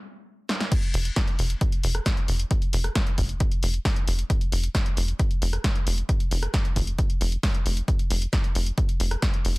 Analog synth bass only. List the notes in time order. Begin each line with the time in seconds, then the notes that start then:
0.94 F1
1.39 F1
1.84 F1
2.28 F1
2.73 F1
3.18 F1
3.63 F1
4.07 F1
4.52 F1
4.97 F1
5.42 F1
5.87 F1
6.31 F1
6.76 F1
7.21 F1
7.66 F1
8.10 F1
8.55 F1
9.00 F1
9.45 F1